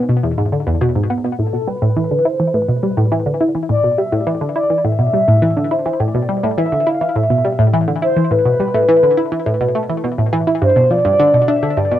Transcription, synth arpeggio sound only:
0.09 0.16 B2 medium
0.23 0.31 E2 medium
0.38 0.42 G#2 medium
0.52 0.57 D3 medium
0.67 0.74 E2 loud
0.81 0.85 B2 loud
0.95 1.03 G#2 medium
1.10 1.14 B3 medium
1.24 1.32 B2 medium
1.39 1.46 A2 medium
1.53 1.57 B2 medium
1.68 1.72 G3 medium
1.82 1.89 A2 loud
1.97 2.01 E3 loud
2.11 2.18 D3 medium
2.25 2.30 E4 medium
2.40 2.47 E3 medium
2.54 2.61 A2 medium
2.69 2.73 B2 medium
2.83 2.87 G3 medium
2.97 3.05 A2 loud
3.12 3.16 E3 loud
3.26 3.33 D3 medium
3.41 3.45 E4 medium
3.55 3.62 E3 medium
3.69 3.77 A2 medium
3.84 3.88 B2 medium
3.98 4.02 G3 medium
4.12 4.20 A2 loud
4.27 4.31 E3 loud
4.41 4.49 D3 medium
4.56 4.60 E4 medium
4.70 4.77 E3 medium
4.85 4.92 A2 medium
4.99 5.03 B2 medium
5.13 5.18 G3 medium
5.28 5.35 A2 loud
5.42 5.47 E3 loud
5.57 5.64 D3 medium
5.71 5.76 E4 medium
5.86 5.93 E3 medium
6.00 6.07 A2 medium
6.14 6.19 B2 medium
6.29 6.33 G3 medium
6.43 6.51 A2 loud
6.58 6.62 E3 loud
6.72 6.79 D3 medium
6.87 6.91 E4 medium
7.01 7.08 E3 medium
7.16 7.23 A2 medium
7.30 7.34 B2 medium
7.45 7.49 G3 medium
7.59 7.66 A2 loud
7.73 7.78 E3 loud
7.88 7.95 D3 medium
8.02 8.06 E4 medium
8.16 8.24 E3 medium
8.31 8.38 A2 medium
8.45 8.50 B2 medium
8.60 8.64 G3 medium
8.74 8.81 A2 loud
8.89 8.93 E3 loud
9.03 9.10 D3 medium
9.17 9.22 E4 medium
9.32 9.39 E3 medium
9.46 9.54 A2 medium
9.61 9.65 B2 medium
9.75 9.86 A3 medium
9.90 10.00 E3 medium
10.04 10.11 B2 medium
10.18 10.26 A2 medium
10.33 10.44 E3 loud
10.47 10.55 E4 medium
10.62 10.69 G2 medium
10.76 10.80 B2 medium
10.91 10.95 F3 medium
11.05 11.12 G2 loud
11.19 11.24 D3 loud
11.34 11.41 B2 medium
11.48 11.53 D4 medium
11.63 11.70 D3 medium
11.77 11.84 G2 medium
11.92 11.96 B2 medium

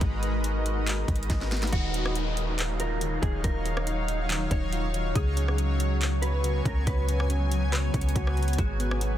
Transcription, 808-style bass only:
0.01 1.04 G#1 loud
1.08 1.29 G#1 loud
1.30 1.71 G#1 loud
1.73 3.19 D#1 loud
3.23 3.43 D#1 loud
3.44 4.47 D#1 loud
4.51 5.13 D#1 loud
5.15 6.61 C#2 loud
6.65 6.86 C#2 loud
6.87 7.90 C#2 loud
7.94 8.15 C#2 loud
8.16 8.57 C#2 loud
8.59 9.18 G#1 loud

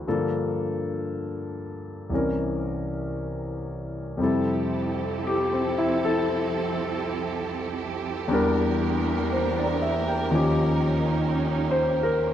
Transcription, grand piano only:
0.07 2.11 G2 soft
0.07 2.11 D3 soft
0.07 2.12 F3 soft
0.07 2.12 A#3 soft
0.07 2.12 A4 soft
2.10 4.19 C2 soft
2.10 4.17 C3 soft
2.10 4.20 E3 soft
2.14 4.21 C#4 soft
2.14 4.21 A#4 soft
4.17 8.28 F2 soft
4.17 8.29 C3 soft
4.17 8.29 G3 soft
4.22 5.77 E4 soft
4.22 6.03 A4 soft
5.27 5.58 G4 medium
5.53 5.88 C4 soft
5.78 6.01 E4 medium
6.05 7.56 A4 medium
8.28 10.31 E2 medium
8.28 10.31 E3 soft
8.28 10.32 G3 medium
8.28 10.32 D4 soft
8.33 10.33 A#4 medium
9.32 9.79 C5 soft
9.57 10.00 D5 soft
9.82 10.12 E5 soft
10.08 10.42 G5 soft
10.30 12.33 D#2 soft
10.30 12.34 D#3 soft
10.30 12.32 F3 soft
10.30 12.34 C#4 soft
10.35 12.34 G4 medium
11.71 12.01 C5 medium
12.03 12.34 A#4 medium

